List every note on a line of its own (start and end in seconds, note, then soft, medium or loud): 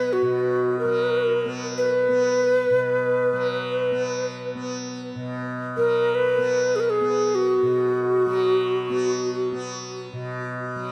0.00 0.21 B2 soft
0.00 0.84 F#3 soft
0.00 1.45 B3 soft
0.00 0.14 B4 medium
0.13 0.79 F#4 medium
0.22 2.70 B2 soft
0.79 1.47 A#4 medium
0.84 3.32 F#3 soft
1.45 2.09 B3 soft
1.78 4.25 B4 medium
2.09 3.92 B3 soft
2.70 5.15 B2 soft
3.33 5.77 F#3 soft
3.92 4.55 B3 soft
4.55 6.38 B3 soft
5.15 7.62 B2 soft
5.77 8.26 F#3 soft
5.77 6.16 A#4 medium
6.15 6.77 B4 medium
6.38 7.01 B3 soft
6.76 6.81 G#4 medium
6.80 6.92 A#4 soft
6.90 7.36 G#4 medium
7.01 8.90 B3 soft
7.35 9.45 F#4 medium
7.62 10.12 B2 soft
8.26 10.75 F#3 soft
8.90 9.52 B3 soft
9.52 10.92 B3 soft
10.13 10.92 B2 soft
10.76 10.92 F#3 soft